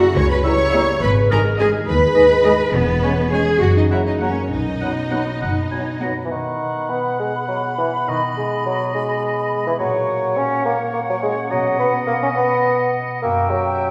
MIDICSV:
0, 0, Header, 1, 12, 480
1, 0, Start_track
1, 0, Key_signature, 5, "major"
1, 0, Tempo, 576923
1, 846, Time_signature, 6, 3, 24, 8
1, 2769, Tempo, 598205
1, 5169, Tempo, 584226
1, 6609, Tempo, 573066
1, 11496, End_track
2, 0, Start_track
2, 0, Title_t, "Flute section"
2, 0, Program_c, 0, 73
2, 379, Note_on_c, 0, 82, 60
2, 429, Note_off_c, 0, 82, 0
2, 619, Note_on_c, 0, 82, 59
2, 669, Note_off_c, 0, 82, 0
2, 1095, Note_on_c, 0, 80, 58
2, 1145, Note_off_c, 0, 80, 0
2, 1331, Note_on_c, 0, 80, 60
2, 1381, Note_off_c, 0, 80, 0
2, 1802, Note_on_c, 0, 80, 57
2, 1852, Note_off_c, 0, 80, 0
2, 2031, Note_on_c, 0, 80, 62
2, 2081, Note_off_c, 0, 80, 0
2, 2517, Note_on_c, 0, 80, 57
2, 2567, Note_off_c, 0, 80, 0
2, 2761, Note_on_c, 0, 80, 52
2, 2810, Note_off_c, 0, 80, 0
2, 3241, Note_on_c, 0, 82, 49
2, 3289, Note_off_c, 0, 82, 0
2, 3479, Note_on_c, 0, 82, 55
2, 3527, Note_off_c, 0, 82, 0
2, 3976, Note_on_c, 0, 83, 44
2, 4024, Note_off_c, 0, 83, 0
2, 4218, Note_on_c, 0, 83, 42
2, 4267, Note_off_c, 0, 83, 0
2, 4691, Note_on_c, 0, 83, 43
2, 4739, Note_off_c, 0, 83, 0
2, 4934, Note_on_c, 0, 83, 48
2, 4982, Note_off_c, 0, 83, 0
2, 5172, Note_on_c, 0, 83, 55
2, 8020, Note_off_c, 0, 83, 0
2, 8060, Note_on_c, 0, 78, 64
2, 10902, Note_off_c, 0, 78, 0
2, 10925, Note_on_c, 0, 79, 65
2, 11496, Note_off_c, 0, 79, 0
2, 11496, End_track
3, 0, Start_track
3, 0, Title_t, "Violin section"
3, 0, Program_c, 1, 48
3, 0, Note_on_c, 1, 78, 87
3, 116, Note_off_c, 1, 78, 0
3, 125, Note_on_c, 1, 85, 101
3, 243, Note_on_c, 1, 83, 75
3, 245, Note_off_c, 1, 85, 0
3, 360, Note_on_c, 1, 85, 94
3, 362, Note_off_c, 1, 83, 0
3, 834, Note_off_c, 1, 85, 0
3, 847, Note_on_c, 1, 83, 90
3, 914, Note_off_c, 1, 83, 0
3, 1089, Note_on_c, 1, 82, 94
3, 1156, Note_off_c, 1, 82, 0
3, 1323, Note_on_c, 1, 80, 86
3, 1390, Note_off_c, 1, 80, 0
3, 1563, Note_on_c, 1, 83, 89
3, 2267, Note_off_c, 1, 83, 0
3, 2286, Note_on_c, 1, 71, 90
3, 2761, Note_off_c, 1, 71, 0
3, 2771, Note_on_c, 1, 80, 72
3, 2835, Note_off_c, 1, 80, 0
3, 3001, Note_on_c, 1, 78, 72
3, 3049, Note_off_c, 1, 78, 0
3, 3122, Note_on_c, 1, 75, 64
3, 3170, Note_off_c, 1, 75, 0
3, 3240, Note_on_c, 1, 76, 58
3, 3288, Note_off_c, 1, 76, 0
3, 3361, Note_on_c, 1, 75, 71
3, 3409, Note_off_c, 1, 75, 0
3, 3485, Note_on_c, 1, 73, 58
3, 3720, Note_off_c, 1, 73, 0
3, 3727, Note_on_c, 1, 75, 70
3, 4906, Note_off_c, 1, 75, 0
3, 11496, End_track
4, 0, Start_track
4, 0, Title_t, "Oboe"
4, 0, Program_c, 2, 68
4, 364, Note_on_c, 2, 76, 67
4, 451, Note_off_c, 2, 76, 0
4, 599, Note_on_c, 2, 76, 64
4, 687, Note_off_c, 2, 76, 0
4, 1089, Note_on_c, 2, 75, 65
4, 1174, Note_off_c, 2, 75, 0
4, 1323, Note_on_c, 2, 75, 62
4, 1409, Note_off_c, 2, 75, 0
4, 1786, Note_on_c, 2, 75, 59
4, 1875, Note_off_c, 2, 75, 0
4, 2026, Note_on_c, 2, 75, 63
4, 2116, Note_off_c, 2, 75, 0
4, 2520, Note_on_c, 2, 73, 55
4, 2609, Note_off_c, 2, 73, 0
4, 2762, Note_on_c, 2, 73, 58
4, 2849, Note_off_c, 2, 73, 0
4, 3234, Note_on_c, 2, 78, 49
4, 3322, Note_off_c, 2, 78, 0
4, 3477, Note_on_c, 2, 78, 49
4, 3565, Note_off_c, 2, 78, 0
4, 3958, Note_on_c, 2, 78, 53
4, 4046, Note_off_c, 2, 78, 0
4, 4200, Note_on_c, 2, 78, 48
4, 4287, Note_off_c, 2, 78, 0
4, 4444, Note_on_c, 2, 78, 55
4, 4552, Note_off_c, 2, 78, 0
4, 4684, Note_on_c, 2, 80, 56
4, 4794, Note_off_c, 2, 80, 0
4, 4933, Note_on_c, 2, 82, 52
4, 5040, Note_off_c, 2, 82, 0
4, 5168, Note_on_c, 2, 78, 49
4, 6619, Note_on_c, 2, 75, 50
4, 6632, Note_off_c, 2, 78, 0
4, 8042, Note_off_c, 2, 75, 0
4, 8047, Note_on_c, 2, 73, 55
4, 9488, Note_on_c, 2, 75, 60
4, 9501, Note_off_c, 2, 73, 0
4, 10921, Note_off_c, 2, 75, 0
4, 10926, Note_on_c, 2, 76, 66
4, 11496, Note_off_c, 2, 76, 0
4, 11496, End_track
5, 0, Start_track
5, 0, Title_t, "Violin section"
5, 0, Program_c, 3, 48
5, 603, Note_on_c, 3, 76, 67
5, 783, Note_off_c, 3, 76, 0
5, 1314, Note_on_c, 3, 75, 65
5, 1496, Note_off_c, 3, 75, 0
5, 2034, Note_on_c, 3, 75, 64
5, 2216, Note_off_c, 3, 75, 0
5, 2760, Note_on_c, 3, 73, 62
5, 2939, Note_off_c, 3, 73, 0
5, 3484, Note_on_c, 3, 78, 56
5, 3662, Note_off_c, 3, 78, 0
5, 4200, Note_on_c, 3, 78, 50
5, 4381, Note_off_c, 3, 78, 0
5, 4933, Note_on_c, 3, 78, 50
5, 5109, Note_off_c, 3, 78, 0
5, 11496, End_track
6, 0, Start_track
6, 0, Title_t, "Cello section"
6, 0, Program_c, 4, 48
6, 0, Note_on_c, 4, 66, 96
6, 124, Note_off_c, 4, 66, 0
6, 137, Note_on_c, 4, 73, 106
6, 251, Note_off_c, 4, 73, 0
6, 263, Note_on_c, 4, 71, 84
6, 372, Note_off_c, 4, 71, 0
6, 380, Note_on_c, 4, 73, 98
6, 844, Note_off_c, 4, 73, 0
6, 852, Note_on_c, 4, 71, 99
6, 918, Note_off_c, 4, 71, 0
6, 1091, Note_on_c, 4, 70, 99
6, 1158, Note_off_c, 4, 70, 0
6, 1337, Note_on_c, 4, 68, 90
6, 1403, Note_off_c, 4, 68, 0
6, 1567, Note_on_c, 4, 71, 108
6, 2269, Note_off_c, 4, 71, 0
6, 2283, Note_on_c, 4, 59, 98
6, 2765, Note_on_c, 4, 68, 89
6, 2769, Note_off_c, 4, 59, 0
6, 2998, Note_off_c, 4, 68, 0
6, 3001, Note_on_c, 4, 66, 94
6, 3121, Note_off_c, 4, 66, 0
6, 3129, Note_on_c, 4, 63, 70
6, 3175, Note_off_c, 4, 63, 0
6, 3241, Note_on_c, 4, 64, 79
6, 3289, Note_off_c, 4, 64, 0
6, 3371, Note_on_c, 4, 63, 63
6, 3484, Note_off_c, 4, 63, 0
6, 3492, Note_on_c, 4, 61, 71
6, 3724, Note_off_c, 4, 61, 0
6, 3730, Note_on_c, 4, 63, 76
6, 4908, Note_off_c, 4, 63, 0
6, 11496, End_track
7, 0, Start_track
7, 0, Title_t, "Clarinet"
7, 0, Program_c, 5, 71
7, 0, Note_on_c, 5, 66, 84
7, 135, Note_on_c, 5, 73, 80
7, 147, Note_off_c, 5, 66, 0
7, 241, Note_off_c, 5, 73, 0
7, 246, Note_on_c, 5, 71, 72
7, 300, Note_off_c, 5, 71, 0
7, 354, Note_on_c, 5, 73, 88
7, 833, Note_on_c, 5, 71, 85
7, 846, Note_off_c, 5, 73, 0
7, 1080, Note_on_c, 5, 70, 89
7, 1093, Note_off_c, 5, 71, 0
7, 1321, Note_off_c, 5, 70, 0
7, 1325, Note_on_c, 5, 68, 90
7, 1432, Note_off_c, 5, 68, 0
7, 1565, Note_on_c, 5, 71, 84
7, 2278, Note_on_c, 5, 59, 75
7, 2291, Note_off_c, 5, 71, 0
7, 2760, Note_off_c, 5, 59, 0
7, 2765, Note_on_c, 5, 68, 70
7, 3005, Note_on_c, 5, 66, 78
7, 3017, Note_off_c, 5, 68, 0
7, 3115, Note_off_c, 5, 66, 0
7, 3120, Note_on_c, 5, 63, 59
7, 3231, Note_off_c, 5, 63, 0
7, 3235, Note_on_c, 5, 64, 63
7, 3291, Note_off_c, 5, 64, 0
7, 3359, Note_on_c, 5, 63, 58
7, 3413, Note_off_c, 5, 63, 0
7, 3475, Note_on_c, 5, 61, 65
7, 3706, Note_off_c, 5, 61, 0
7, 3711, Note_on_c, 5, 63, 68
7, 4898, Note_off_c, 5, 63, 0
7, 5160, Note_on_c, 5, 59, 55
7, 8061, Note_on_c, 5, 58, 61
7, 8073, Note_off_c, 5, 59, 0
7, 9500, Note_on_c, 5, 59, 71
7, 9512, Note_off_c, 5, 58, 0
7, 10791, Note_off_c, 5, 59, 0
7, 10934, Note_on_c, 5, 66, 70
7, 11496, Note_off_c, 5, 66, 0
7, 11496, End_track
8, 0, Start_track
8, 0, Title_t, "Harp"
8, 0, Program_c, 6, 46
8, 0, Note_on_c, 6, 42, 64
8, 0, Note_on_c, 6, 49, 56
8, 0, Note_on_c, 6, 54, 50
8, 0, Note_on_c, 6, 58, 57
8, 0, Note_on_c, 6, 66, 58
8, 139, Note_on_c, 6, 64, 55
8, 373, Note_on_c, 6, 67, 57
8, 603, Note_off_c, 6, 64, 0
8, 613, Note_on_c, 6, 64, 60
8, 854, Note_on_c, 6, 44, 70
8, 867, Note_off_c, 6, 54, 0
8, 868, Note_off_c, 6, 66, 0
8, 869, Note_off_c, 6, 64, 0
8, 869, Note_off_c, 6, 67, 0
8, 871, Note_off_c, 6, 42, 0
8, 872, Note_off_c, 6, 49, 0
8, 874, Note_off_c, 6, 58, 0
8, 1090, Note_on_c, 6, 51, 52
8, 1330, Note_on_c, 6, 56, 55
8, 1564, Note_on_c, 6, 63, 58
8, 1804, Note_on_c, 6, 68, 52
8, 2029, Note_off_c, 6, 63, 0
8, 2039, Note_on_c, 6, 63, 59
8, 2282, Note_on_c, 6, 40, 66
8, 2300, Note_off_c, 6, 63, 0
8, 2302, Note_off_c, 6, 51, 0
8, 2304, Note_off_c, 6, 44, 0
8, 2520, Note_off_c, 6, 56, 0
8, 2530, Note_on_c, 6, 56, 57
8, 2763, Note_off_c, 6, 68, 0
8, 2768, Note_on_c, 6, 61, 49
8, 2774, Note_on_c, 6, 68, 50
8, 3001, Note_on_c, 6, 42, 62
8, 3023, Note_off_c, 6, 40, 0
8, 3025, Note_off_c, 6, 56, 0
8, 3025, Note_off_c, 6, 68, 0
8, 3240, Note_on_c, 6, 54, 48
8, 3470, Note_off_c, 6, 61, 0
8, 3479, Note_on_c, 6, 61, 45
8, 3483, Note_on_c, 6, 70, 49
8, 3720, Note_on_c, 6, 47, 55
8, 3741, Note_off_c, 6, 42, 0
8, 3741, Note_off_c, 6, 61, 0
8, 3743, Note_off_c, 6, 70, 0
8, 3959, Note_off_c, 6, 54, 0
8, 3968, Note_on_c, 6, 54, 38
8, 4450, Note_on_c, 6, 71, 47
8, 4685, Note_on_c, 6, 66, 39
8, 4921, Note_off_c, 6, 71, 0
8, 4930, Note_on_c, 6, 71, 39
8, 5164, Note_off_c, 6, 47, 0
8, 5173, Note_on_c, 6, 47, 43
8, 5400, Note_off_c, 6, 71, 0
8, 5410, Note_on_c, 6, 71, 36
8, 5641, Note_off_c, 6, 66, 0
8, 5651, Note_on_c, 6, 66, 40
8, 5883, Note_off_c, 6, 71, 0
8, 5892, Note_on_c, 6, 71, 36
8, 6119, Note_off_c, 6, 66, 0
8, 6129, Note_on_c, 6, 66, 36
8, 6371, Note_on_c, 6, 59, 40
8, 6602, Note_off_c, 6, 47, 0
8, 6612, Note_on_c, 6, 47, 45
8, 6627, Note_off_c, 6, 66, 0
8, 6629, Note_off_c, 6, 54, 0
8, 6853, Note_on_c, 6, 63, 35
8, 7080, Note_off_c, 6, 71, 0
8, 7090, Note_on_c, 6, 71, 43
8, 7324, Note_off_c, 6, 63, 0
8, 7334, Note_on_c, 6, 63, 44
8, 7563, Note_off_c, 6, 71, 0
8, 7573, Note_on_c, 6, 71, 38
8, 7820, Note_on_c, 6, 56, 50
8, 8053, Note_on_c, 6, 46, 56
8, 8072, Note_off_c, 6, 59, 0
8, 8072, Note_off_c, 6, 63, 0
8, 8072, Note_off_c, 6, 71, 0
8, 8073, Note_off_c, 6, 47, 0
8, 8075, Note_off_c, 6, 56, 0
8, 8297, Note_on_c, 6, 66, 44
8, 8772, Note_off_c, 6, 66, 0
8, 8782, Note_on_c, 6, 66, 53
8, 9259, Note_on_c, 6, 61, 50
8, 9500, Note_on_c, 6, 47, 61
8, 9516, Note_off_c, 6, 46, 0
8, 9517, Note_off_c, 6, 61, 0
8, 9728, Note_off_c, 6, 66, 0
8, 9738, Note_on_c, 6, 66, 42
8, 9979, Note_on_c, 6, 75, 47
8, 10203, Note_off_c, 6, 66, 0
8, 10213, Note_on_c, 6, 66, 51
8, 10446, Note_off_c, 6, 75, 0
8, 10456, Note_on_c, 6, 75, 44
8, 10694, Note_on_c, 6, 59, 50
8, 10933, Note_on_c, 6, 42, 56
8, 10951, Note_off_c, 6, 59, 0
8, 10952, Note_off_c, 6, 47, 0
8, 10952, Note_off_c, 6, 75, 0
8, 11166, Note_on_c, 6, 67, 46
8, 11410, Note_on_c, 6, 76, 47
8, 11496, Note_off_c, 6, 42, 0
8, 11496, Note_off_c, 6, 66, 0
8, 11496, Note_off_c, 6, 67, 0
8, 11496, Note_off_c, 6, 76, 0
8, 11496, End_track
9, 0, Start_track
9, 0, Title_t, "Viola section"
9, 0, Program_c, 7, 48
9, 610, Note_on_c, 7, 67, 72
9, 611, Note_on_c, 7, 58, 77
9, 787, Note_off_c, 7, 67, 0
9, 788, Note_off_c, 7, 58, 0
9, 1327, Note_on_c, 7, 56, 71
9, 1330, Note_on_c, 7, 68, 65
9, 1503, Note_off_c, 7, 56, 0
9, 1504, Note_off_c, 7, 68, 0
9, 2037, Note_on_c, 7, 68, 69
9, 2038, Note_on_c, 7, 56, 76
9, 2218, Note_off_c, 7, 56, 0
9, 2218, Note_off_c, 7, 68, 0
9, 2763, Note_on_c, 7, 56, 61
9, 2764, Note_on_c, 7, 68, 62
9, 2941, Note_off_c, 7, 56, 0
9, 2941, Note_off_c, 7, 68, 0
9, 3482, Note_on_c, 7, 66, 60
9, 3485, Note_on_c, 7, 58, 61
9, 3661, Note_off_c, 7, 66, 0
9, 3663, Note_off_c, 7, 58, 0
9, 4201, Note_on_c, 7, 59, 54
9, 4201, Note_on_c, 7, 66, 51
9, 4381, Note_off_c, 7, 59, 0
9, 4381, Note_off_c, 7, 66, 0
9, 4924, Note_on_c, 7, 59, 54
9, 4925, Note_on_c, 7, 66, 46
9, 5105, Note_off_c, 7, 59, 0
9, 5105, Note_off_c, 7, 66, 0
9, 11496, End_track
10, 0, Start_track
10, 0, Title_t, "French horn section"
10, 0, Program_c, 8, 60
10, 367, Note_on_c, 8, 64, 70
10, 369, Note_on_c, 8, 55, 71
10, 453, Note_off_c, 8, 64, 0
10, 455, Note_off_c, 8, 55, 0
10, 616, Note_on_c, 8, 64, 60
10, 621, Note_on_c, 8, 55, 60
10, 700, Note_off_c, 8, 64, 0
10, 704, Note_off_c, 8, 55, 0
10, 1088, Note_on_c, 8, 63, 67
10, 1089, Note_on_c, 8, 56, 63
10, 1173, Note_off_c, 8, 63, 0
10, 1174, Note_off_c, 8, 56, 0
10, 1319, Note_on_c, 8, 63, 69
10, 1323, Note_on_c, 8, 56, 71
10, 1406, Note_off_c, 8, 63, 0
10, 1409, Note_off_c, 8, 56, 0
10, 1794, Note_on_c, 8, 63, 67
10, 1798, Note_on_c, 8, 56, 68
10, 1881, Note_off_c, 8, 63, 0
10, 1884, Note_off_c, 8, 56, 0
10, 2038, Note_on_c, 8, 56, 63
10, 2042, Note_on_c, 8, 63, 67
10, 2125, Note_off_c, 8, 56, 0
10, 2128, Note_off_c, 8, 63, 0
10, 2516, Note_on_c, 8, 61, 61
10, 2518, Note_on_c, 8, 56, 60
10, 2606, Note_off_c, 8, 61, 0
10, 2607, Note_off_c, 8, 56, 0
10, 2762, Note_on_c, 8, 61, 67
10, 2765, Note_on_c, 8, 56, 60
10, 2849, Note_off_c, 8, 61, 0
10, 2851, Note_off_c, 8, 56, 0
10, 3240, Note_on_c, 8, 54, 56
10, 3241, Note_on_c, 8, 58, 53
10, 3327, Note_off_c, 8, 54, 0
10, 3328, Note_off_c, 8, 58, 0
10, 3476, Note_on_c, 8, 58, 51
10, 3479, Note_on_c, 8, 54, 49
10, 3564, Note_off_c, 8, 58, 0
10, 3567, Note_off_c, 8, 54, 0
10, 3960, Note_on_c, 8, 54, 47
10, 3964, Note_on_c, 8, 59, 48
10, 4047, Note_off_c, 8, 54, 0
10, 4051, Note_off_c, 8, 59, 0
10, 4215, Note_on_c, 8, 59, 50
10, 4217, Note_on_c, 8, 54, 49
10, 4299, Note_off_c, 8, 59, 0
10, 4300, Note_off_c, 8, 54, 0
10, 4681, Note_on_c, 8, 59, 45
10, 4682, Note_on_c, 8, 54, 49
10, 4769, Note_off_c, 8, 59, 0
10, 4770, Note_off_c, 8, 54, 0
10, 4920, Note_on_c, 8, 54, 43
10, 4924, Note_on_c, 8, 59, 44
10, 5008, Note_off_c, 8, 54, 0
10, 5011, Note_off_c, 8, 59, 0
10, 11496, End_track
11, 0, Start_track
11, 0, Title_t, "Bassoon"
11, 0, Program_c, 10, 70
11, 367, Note_on_c, 10, 55, 51
11, 453, Note_off_c, 10, 55, 0
11, 606, Note_on_c, 10, 55, 48
11, 693, Note_off_c, 10, 55, 0
11, 1092, Note_on_c, 10, 56, 60
11, 1176, Note_off_c, 10, 56, 0
11, 1326, Note_on_c, 10, 56, 64
11, 1411, Note_off_c, 10, 56, 0
11, 1801, Note_on_c, 10, 56, 53
11, 1886, Note_off_c, 10, 56, 0
11, 2036, Note_on_c, 10, 56, 48
11, 2124, Note_off_c, 10, 56, 0
11, 2531, Note_on_c, 10, 56, 59
11, 2617, Note_off_c, 10, 56, 0
11, 2775, Note_on_c, 10, 56, 52
11, 2858, Note_off_c, 10, 56, 0
11, 3244, Note_on_c, 10, 54, 48
11, 3330, Note_off_c, 10, 54, 0
11, 3482, Note_on_c, 10, 54, 48
11, 3569, Note_off_c, 10, 54, 0
11, 3964, Note_on_c, 10, 54, 48
11, 4050, Note_off_c, 10, 54, 0
11, 4207, Note_on_c, 10, 54, 46
11, 4293, Note_off_c, 10, 54, 0
11, 4684, Note_on_c, 10, 54, 36
11, 4772, Note_off_c, 10, 54, 0
11, 4924, Note_on_c, 10, 54, 38
11, 5007, Note_off_c, 10, 54, 0
11, 5112, Note_on_c, 10, 52, 48
11, 5165, Note_on_c, 10, 51, 68
11, 5177, Note_off_c, 10, 52, 0
11, 5644, Note_on_c, 10, 59, 67
11, 5656, Note_off_c, 10, 51, 0
11, 5884, Note_off_c, 10, 59, 0
11, 5889, Note_on_c, 10, 56, 58
11, 5997, Note_off_c, 10, 56, 0
11, 6125, Note_on_c, 10, 54, 49
11, 6234, Note_off_c, 10, 54, 0
11, 6368, Note_on_c, 10, 52, 58
11, 6476, Note_off_c, 10, 52, 0
11, 6616, Note_on_c, 10, 51, 66
11, 6724, Note_off_c, 10, 51, 0
11, 6860, Note_on_c, 10, 56, 67
11, 7093, Note_off_c, 10, 56, 0
11, 7100, Note_on_c, 10, 54, 71
11, 7331, Note_off_c, 10, 54, 0
11, 7340, Note_on_c, 10, 56, 71
11, 7924, Note_off_c, 10, 56, 0
11, 7945, Note_on_c, 10, 52, 70
11, 7996, Note_off_c, 10, 52, 0
11, 8052, Note_on_c, 10, 54, 76
11, 8535, Note_on_c, 10, 61, 88
11, 8548, Note_off_c, 10, 54, 0
11, 8765, Note_off_c, 10, 61, 0
11, 8770, Note_on_c, 10, 58, 77
11, 8878, Note_off_c, 10, 58, 0
11, 9009, Note_on_c, 10, 58, 59
11, 9064, Note_off_c, 10, 58, 0
11, 9143, Note_on_c, 10, 54, 74
11, 9195, Note_off_c, 10, 54, 0
11, 9250, Note_on_c, 10, 56, 74
11, 9360, Note_off_c, 10, 56, 0
11, 9485, Note_on_c, 10, 54, 84
11, 9720, Note_off_c, 10, 54, 0
11, 9725, Note_on_c, 10, 59, 84
11, 9835, Note_off_c, 10, 59, 0
11, 9957, Note_on_c, 10, 58, 77
11, 10015, Note_off_c, 10, 58, 0
11, 10088, Note_on_c, 10, 61, 77
11, 10143, Note_off_c, 10, 61, 0
11, 10202, Note_on_c, 10, 59, 87
11, 10684, Note_off_c, 10, 59, 0
11, 10921, Note_on_c, 10, 58, 89
11, 11154, Note_on_c, 10, 54, 79
11, 11167, Note_off_c, 10, 58, 0
11, 11496, Note_off_c, 10, 54, 0
11, 11496, End_track
12, 0, Start_track
12, 0, Title_t, "Double bass section"
12, 0, Program_c, 11, 48
12, 131, Note_on_c, 11, 37, 82
12, 706, Note_off_c, 11, 37, 0
12, 851, Note_on_c, 11, 32, 87
12, 1424, Note_off_c, 11, 32, 0
12, 1568, Note_on_c, 11, 39, 84
12, 2141, Note_off_c, 11, 39, 0
12, 2284, Note_on_c, 11, 28, 85
12, 2867, Note_off_c, 11, 28, 0
12, 3000, Note_on_c, 11, 30, 72
12, 3580, Note_off_c, 11, 30, 0
12, 3726, Note_on_c, 11, 35, 70
12, 4306, Note_off_c, 11, 35, 0
12, 4448, Note_on_c, 11, 30, 61
12, 5030, Note_off_c, 11, 30, 0
12, 11496, End_track
0, 0, End_of_file